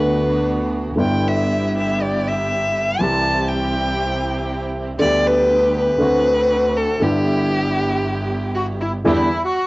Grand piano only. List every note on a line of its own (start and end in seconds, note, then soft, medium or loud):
0.00 0.91 D2 medium
0.00 0.91 D3 medium
0.00 0.91 A3 soft
0.00 0.92 B3 soft
0.00 0.92 F#4 medium
0.96 2.90 G1 medium
0.96 2.90 G2 medium
0.96 2.89 D3 medium
0.96 2.90 G3 soft
0.96 2.91 B3 soft
1.00 2.92 E4 medium
2.99 4.90 C2 medium
2.99 4.90 C3 medium
2.99 4.89 E3 medium
2.99 4.90 G3 medium
2.99 4.91 C4 soft
2.99 4.91 G4 medium
4.99 5.95 D2 medium
4.99 5.95 D3 medium
4.99 5.94 G3 soft
4.99 5.95 B3 medium
5.04 5.96 G4 medium
5.98 6.96 D2 medium
5.98 6.96 D3 medium
5.98 6.96 A3 medium
5.98 6.96 C4 medium
6.03 6.97 F#4 medium
7.00 8.96 G1 medium
7.00 8.96 G2 medium
7.00 8.95 D3 medium
7.00 8.96 G3 medium
7.00 8.97 B3 medium
7.04 8.97 E4 medium
9.05 9.27 E2 medium
9.05 9.27 D3 medium
9.05 9.27 E3 medium
9.05 9.27 G3 medium
9.05 9.27 B3 medium
9.05 9.27 E4 medium